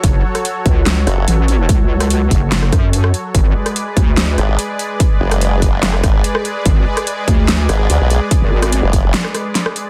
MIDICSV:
0, 0, Header, 1, 5, 480
1, 0, Start_track
1, 0, Tempo, 413793
1, 41, Time_signature, 4, 2, 24, 8
1, 11482, End_track
2, 0, Start_track
2, 0, Title_t, "Supersaw synth"
2, 0, Program_c, 0, 81
2, 0, Note_on_c, 0, 54, 80
2, 0, Note_on_c, 0, 66, 78
2, 0, Note_on_c, 0, 69, 78
2, 0, Note_on_c, 0, 73, 96
2, 3835, Note_off_c, 0, 66, 0
2, 3835, Note_off_c, 0, 69, 0
2, 3835, Note_off_c, 0, 73, 0
2, 3836, Note_off_c, 0, 54, 0
2, 3880, Note_on_c, 0, 71, 76
2, 3881, Note_on_c, 0, 56, 85
2, 3881, Note_on_c, 0, 68, 77
2, 3881, Note_on_c, 0, 74, 94
2, 11482, Note_off_c, 0, 56, 0
2, 11482, Note_off_c, 0, 68, 0
2, 11482, Note_off_c, 0, 71, 0
2, 11482, Note_off_c, 0, 74, 0
2, 11482, End_track
3, 0, Start_track
3, 0, Title_t, "Wobble bass"
3, 0, Program_c, 1, 39
3, 41, Note_on_c, 1, 30, 99
3, 263, Note_off_c, 1, 30, 0
3, 762, Note_on_c, 1, 37, 98
3, 1223, Note_off_c, 1, 37, 0
3, 1482, Note_on_c, 1, 33, 99
3, 1943, Note_off_c, 1, 33, 0
3, 1961, Note_on_c, 1, 37, 99
3, 2662, Note_off_c, 1, 37, 0
3, 2681, Note_on_c, 1, 30, 97
3, 3143, Note_off_c, 1, 30, 0
3, 3161, Note_on_c, 1, 42, 99
3, 3622, Note_off_c, 1, 42, 0
3, 3881, Note_on_c, 1, 32, 97
3, 4102, Note_off_c, 1, 32, 0
3, 4600, Note_on_c, 1, 38, 100
3, 5062, Note_off_c, 1, 38, 0
3, 7721, Note_on_c, 1, 32, 92
3, 7942, Note_off_c, 1, 32, 0
3, 8441, Note_on_c, 1, 38, 101
3, 8903, Note_off_c, 1, 38, 0
3, 9764, Note_on_c, 1, 32, 97
3, 10225, Note_off_c, 1, 32, 0
3, 11482, End_track
4, 0, Start_track
4, 0, Title_t, "Wobble bass"
4, 0, Program_c, 2, 39
4, 1241, Note_on_c, 2, 30, 95
4, 1463, Note_off_c, 2, 30, 0
4, 5081, Note_on_c, 2, 32, 96
4, 5302, Note_off_c, 2, 32, 0
4, 6041, Note_on_c, 2, 30, 97
4, 6982, Note_off_c, 2, 30, 0
4, 7001, Note_on_c, 2, 32, 104
4, 7222, Note_off_c, 2, 32, 0
4, 8921, Note_on_c, 2, 32, 95
4, 9142, Note_off_c, 2, 32, 0
4, 9161, Note_on_c, 2, 38, 99
4, 9265, Note_off_c, 2, 38, 0
4, 9284, Note_on_c, 2, 35, 90
4, 9505, Note_off_c, 2, 35, 0
4, 10245, Note_on_c, 2, 30, 101
4, 10601, Note_off_c, 2, 30, 0
4, 11482, End_track
5, 0, Start_track
5, 0, Title_t, "Drums"
5, 41, Note_on_c, 9, 36, 127
5, 41, Note_on_c, 9, 42, 88
5, 157, Note_off_c, 9, 36, 0
5, 157, Note_off_c, 9, 42, 0
5, 405, Note_on_c, 9, 37, 56
5, 405, Note_on_c, 9, 42, 51
5, 521, Note_off_c, 9, 37, 0
5, 521, Note_off_c, 9, 42, 0
5, 521, Note_on_c, 9, 42, 82
5, 637, Note_off_c, 9, 42, 0
5, 761, Note_on_c, 9, 36, 115
5, 761, Note_on_c, 9, 42, 54
5, 877, Note_off_c, 9, 36, 0
5, 877, Note_off_c, 9, 42, 0
5, 1002, Note_on_c, 9, 38, 127
5, 1002, Note_on_c, 9, 42, 82
5, 1118, Note_off_c, 9, 38, 0
5, 1118, Note_off_c, 9, 42, 0
5, 1241, Note_on_c, 9, 37, 54
5, 1241, Note_on_c, 9, 42, 57
5, 1357, Note_off_c, 9, 37, 0
5, 1357, Note_off_c, 9, 42, 0
5, 1481, Note_on_c, 9, 42, 83
5, 1597, Note_off_c, 9, 42, 0
5, 1720, Note_on_c, 9, 42, 54
5, 1836, Note_off_c, 9, 42, 0
5, 1961, Note_on_c, 9, 36, 118
5, 1961, Note_on_c, 9, 42, 79
5, 2077, Note_off_c, 9, 36, 0
5, 2077, Note_off_c, 9, 42, 0
5, 2325, Note_on_c, 9, 37, 58
5, 2325, Note_on_c, 9, 42, 50
5, 2441, Note_off_c, 9, 37, 0
5, 2441, Note_off_c, 9, 42, 0
5, 2441, Note_on_c, 9, 42, 82
5, 2557, Note_off_c, 9, 42, 0
5, 2681, Note_on_c, 9, 36, 61
5, 2681, Note_on_c, 9, 42, 54
5, 2797, Note_off_c, 9, 36, 0
5, 2797, Note_off_c, 9, 42, 0
5, 2921, Note_on_c, 9, 38, 121
5, 2921, Note_on_c, 9, 42, 79
5, 3037, Note_off_c, 9, 38, 0
5, 3037, Note_off_c, 9, 42, 0
5, 3045, Note_on_c, 9, 37, 59
5, 3161, Note_off_c, 9, 37, 0
5, 3161, Note_on_c, 9, 36, 115
5, 3161, Note_on_c, 9, 37, 53
5, 3161, Note_on_c, 9, 42, 52
5, 3277, Note_off_c, 9, 36, 0
5, 3277, Note_off_c, 9, 37, 0
5, 3277, Note_off_c, 9, 42, 0
5, 3402, Note_on_c, 9, 42, 81
5, 3518, Note_off_c, 9, 42, 0
5, 3524, Note_on_c, 9, 37, 75
5, 3640, Note_off_c, 9, 37, 0
5, 3642, Note_on_c, 9, 42, 51
5, 3758, Note_off_c, 9, 42, 0
5, 3881, Note_on_c, 9, 36, 117
5, 3881, Note_on_c, 9, 42, 83
5, 3997, Note_off_c, 9, 36, 0
5, 3997, Note_off_c, 9, 42, 0
5, 4245, Note_on_c, 9, 37, 60
5, 4245, Note_on_c, 9, 42, 49
5, 4361, Note_off_c, 9, 37, 0
5, 4361, Note_off_c, 9, 42, 0
5, 4361, Note_on_c, 9, 42, 81
5, 4477, Note_off_c, 9, 42, 0
5, 4601, Note_on_c, 9, 36, 106
5, 4601, Note_on_c, 9, 42, 53
5, 4717, Note_off_c, 9, 36, 0
5, 4717, Note_off_c, 9, 42, 0
5, 4841, Note_on_c, 9, 38, 126
5, 4841, Note_on_c, 9, 42, 76
5, 4957, Note_off_c, 9, 38, 0
5, 4957, Note_off_c, 9, 42, 0
5, 5081, Note_on_c, 9, 37, 55
5, 5081, Note_on_c, 9, 42, 52
5, 5197, Note_off_c, 9, 37, 0
5, 5197, Note_off_c, 9, 42, 0
5, 5320, Note_on_c, 9, 42, 77
5, 5436, Note_off_c, 9, 42, 0
5, 5560, Note_on_c, 9, 42, 51
5, 5676, Note_off_c, 9, 42, 0
5, 5800, Note_on_c, 9, 42, 77
5, 5801, Note_on_c, 9, 36, 120
5, 5916, Note_off_c, 9, 42, 0
5, 5917, Note_off_c, 9, 36, 0
5, 6164, Note_on_c, 9, 37, 66
5, 6164, Note_on_c, 9, 42, 50
5, 6280, Note_off_c, 9, 37, 0
5, 6280, Note_off_c, 9, 42, 0
5, 6280, Note_on_c, 9, 42, 77
5, 6396, Note_off_c, 9, 42, 0
5, 6520, Note_on_c, 9, 42, 51
5, 6521, Note_on_c, 9, 36, 60
5, 6636, Note_off_c, 9, 42, 0
5, 6637, Note_off_c, 9, 36, 0
5, 6760, Note_on_c, 9, 38, 115
5, 6760, Note_on_c, 9, 42, 76
5, 6876, Note_off_c, 9, 38, 0
5, 6876, Note_off_c, 9, 42, 0
5, 6884, Note_on_c, 9, 37, 69
5, 7000, Note_off_c, 9, 37, 0
5, 7001, Note_on_c, 9, 36, 107
5, 7001, Note_on_c, 9, 37, 56
5, 7001, Note_on_c, 9, 42, 55
5, 7117, Note_off_c, 9, 36, 0
5, 7117, Note_off_c, 9, 37, 0
5, 7117, Note_off_c, 9, 42, 0
5, 7241, Note_on_c, 9, 42, 73
5, 7357, Note_off_c, 9, 42, 0
5, 7364, Note_on_c, 9, 37, 84
5, 7480, Note_off_c, 9, 37, 0
5, 7481, Note_on_c, 9, 42, 51
5, 7597, Note_off_c, 9, 42, 0
5, 7720, Note_on_c, 9, 42, 82
5, 7721, Note_on_c, 9, 36, 121
5, 7836, Note_off_c, 9, 42, 0
5, 7837, Note_off_c, 9, 36, 0
5, 8085, Note_on_c, 9, 37, 64
5, 8085, Note_on_c, 9, 42, 53
5, 8201, Note_off_c, 9, 37, 0
5, 8201, Note_off_c, 9, 42, 0
5, 8201, Note_on_c, 9, 42, 81
5, 8317, Note_off_c, 9, 42, 0
5, 8441, Note_on_c, 9, 36, 107
5, 8441, Note_on_c, 9, 42, 52
5, 8557, Note_off_c, 9, 36, 0
5, 8557, Note_off_c, 9, 42, 0
5, 8681, Note_on_c, 9, 38, 116
5, 8681, Note_on_c, 9, 42, 78
5, 8797, Note_off_c, 9, 38, 0
5, 8797, Note_off_c, 9, 42, 0
5, 8921, Note_on_c, 9, 37, 60
5, 8921, Note_on_c, 9, 42, 54
5, 9037, Note_off_c, 9, 37, 0
5, 9037, Note_off_c, 9, 42, 0
5, 9161, Note_on_c, 9, 42, 79
5, 9277, Note_off_c, 9, 42, 0
5, 9401, Note_on_c, 9, 42, 51
5, 9517, Note_off_c, 9, 42, 0
5, 9641, Note_on_c, 9, 36, 116
5, 9641, Note_on_c, 9, 42, 84
5, 9757, Note_off_c, 9, 36, 0
5, 9757, Note_off_c, 9, 42, 0
5, 10004, Note_on_c, 9, 37, 64
5, 10004, Note_on_c, 9, 42, 54
5, 10120, Note_off_c, 9, 37, 0
5, 10120, Note_off_c, 9, 42, 0
5, 10121, Note_on_c, 9, 42, 89
5, 10237, Note_off_c, 9, 42, 0
5, 10361, Note_on_c, 9, 36, 58
5, 10361, Note_on_c, 9, 42, 55
5, 10477, Note_off_c, 9, 36, 0
5, 10477, Note_off_c, 9, 42, 0
5, 10601, Note_on_c, 9, 38, 122
5, 10601, Note_on_c, 9, 42, 81
5, 10717, Note_off_c, 9, 38, 0
5, 10717, Note_off_c, 9, 42, 0
5, 10724, Note_on_c, 9, 37, 66
5, 10840, Note_off_c, 9, 37, 0
5, 10840, Note_on_c, 9, 37, 58
5, 10840, Note_on_c, 9, 42, 55
5, 10956, Note_off_c, 9, 37, 0
5, 10956, Note_off_c, 9, 42, 0
5, 11081, Note_on_c, 9, 38, 60
5, 11081, Note_on_c, 9, 42, 82
5, 11197, Note_off_c, 9, 38, 0
5, 11197, Note_off_c, 9, 42, 0
5, 11204, Note_on_c, 9, 37, 82
5, 11320, Note_off_c, 9, 37, 0
5, 11321, Note_on_c, 9, 42, 53
5, 11437, Note_off_c, 9, 42, 0
5, 11482, End_track
0, 0, End_of_file